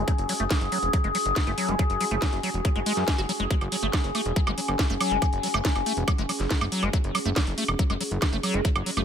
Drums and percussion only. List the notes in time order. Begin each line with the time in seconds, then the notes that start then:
0.08 kick, closed hi-hat
0.18 closed hi-hat
0.29 open hi-hat
0.40 closed hi-hat
0.51 kick, snare, closed hi-hat
0.61 closed hi-hat
0.72 open hi-hat
0.83 closed hi-hat
0.93 kick, closed hi-hat
1.04 closed hi-hat
1.15 open hi-hat
1.26 closed hi-hat
1.36 kick, snare, closed hi-hat
1.47 closed hi-hat
1.58 open hi-hat
1.68 closed hi-hat
1.79 kick, closed hi-hat
1.90 closed hi-hat
2.01 open hi-hat
2.11 closed hi-hat
2.22 kick, snare, closed hi-hat
2.33 closed hi-hat
2.43 open hi-hat
2.54 closed hi-hat
2.65 kick, closed hi-hat
2.76 closed hi-hat
2.86 open hi-hat
2.97 snare, closed hi-hat
3.08 kick, snare, closed hi-hat
3.18 closed hi-hat
3.29 open hi-hat
3.40 closed hi-hat
3.51 kick, closed hi-hat
3.61 closed hi-hat, high woodblock
3.72 open hi-hat
3.83 closed hi-hat
3.93 kick, snare, closed hi-hat, high woodblock
4.04 closed hi-hat
4.15 open hi-hat, high woodblock
4.26 closed hi-hat
4.36 kick, closed hi-hat
4.47 closed hi-hat, high woodblock
4.58 open hi-hat
4.68 closed hi-hat, high woodblock
4.79 kick, snare, closed hi-hat
4.90 closed hi-hat
5.01 open hi-hat, high woodblock
5.11 closed hi-hat
5.22 kick, closed hi-hat, high woodblock
5.33 closed hi-hat
5.43 open hi-hat
5.54 closed hi-hat, high woodblock
5.65 kick, snare, closed hi-hat
5.76 closed hi-hat, high woodblock
5.86 open hi-hat
5.97 closed hi-hat
6.08 kick, closed hi-hat, high woodblock
6.18 closed hi-hat
6.29 open hi-hat, high woodblock
6.40 snare, closed hi-hat
6.51 kick, snare, closed hi-hat
6.61 closed hi-hat, high woodblock
6.72 open hi-hat
6.83 closed hi-hat, high woodblock
6.93 kick, closed hi-hat
7.04 closed hi-hat
7.15 open hi-hat, high woodblock
7.26 closed hi-hat
7.36 kick, snare, closed hi-hat, high woodblock
7.47 closed hi-hat
7.58 open hi-hat
7.68 closed hi-hat, high woodblock
7.79 kick, closed hi-hat
7.90 closed hi-hat, high woodblock
8.01 open hi-hat
8.11 closed hi-hat
8.22 kick, snare, closed hi-hat, high woodblock
8.33 closed hi-hat
8.43 open hi-hat, high woodblock
8.54 closed hi-hat
8.65 kick, closed hi-hat
8.76 closed hi-hat, high woodblock
8.86 open hi-hat
8.97 closed hi-hat, high woodblock